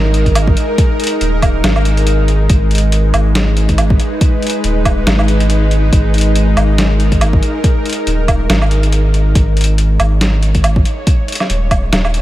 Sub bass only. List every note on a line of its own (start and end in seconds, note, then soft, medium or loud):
0.00 0.55 G#1 loud
1.21 1.62 D#1 loud
1.64 2.48 G#1 medium
2.50 3.12 G#1 loud
3.14 3.98 G#1 loud
4.64 5.05 D#1 loud
5.07 5.91 G#1 loud
5.93 6.55 G#1 loud
6.57 7.41 G#1 loud
8.07 8.48 D#1 loud
8.50 9.34 G#1 medium
9.35 9.98 G#1 loud
10.00 10.84 G#1 loud
11.50 11.91 D#1 loud
11.93 12.22 D#1 loud